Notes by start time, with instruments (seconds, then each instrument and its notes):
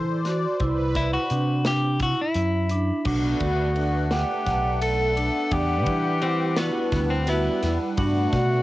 Already playing: picked electric bass E3, vibraphone E4, analog synth pad C5
0.08 analog synth pad D5
0.25 vibraphone F#4, snare, closed hi-hat
0.43 analog synth pad C5
0.60 picked electric bass C2, vibraphone E4, analog synth pad B4, kick, closed hi-hat
0.95 clean electric guitar E4, kick, snare, closed hi-hat
1.13 clean electric guitar F#4
1.30 picked electric bass C3, vibraphone D4, closed hi-hat
1.65 vibraphone D4, clean electric guitar G4, snare, closed hi-hat
2.00 vibraphone E4, clean electric guitar F#4, kick, closed hi-hat
2.21 clean electric guitar E4
2.34 picked electric bass F#2, vibraphone E4, closed hi-hat
2.69 vibraphone D4, closed hi-hat
3.05 picked electric bass B1, analog synth pad A3 B3 D4 F#5, vibraphone D4, tenor saxophone F#4, kick, crash
3.40 picked electric bass D2, vibraphone F#4, kick, ride
3.75 vibraphone D4, ride
4.11 tenor saxophone G4, vibraphone F#5, snare, ride
4.45 picked electric bass B1, vibraphone F#5, kick, snare, ride
4.81 vibraphone A4, tenor saxophone A4, ride
5.16 vibraphone D4, ride
5.51 picked electric bass E2, analog synth pad G3 D4 B4 F#5, tenor saxophone G4, kick, ride
5.86 picked electric bass E3, vibraphone D4, kick, ride
6.22 clean electric guitar C4, vibraphone E4, ride
6.57 clean electric guitar B3, vibraphone E4, tenor saxophone F#4, snare, ride
6.92 picked electric bass D2, kick, snare, ride
7.10 clean electric guitar C4
7.27 clean electric guitar B3, tenor saxophone E4, vibraphone F#4, snare, ride
7.63 picked electric bass E2, vibraphone E4, snare, ride
7.97 picked electric bass G2, analog synth pad A3 B3 D4 F#5, vibraphone D4, tenor saxophone F#4, kick, ride
8.33 picked electric bass B2, vibraphone F#4, kick, snare, ride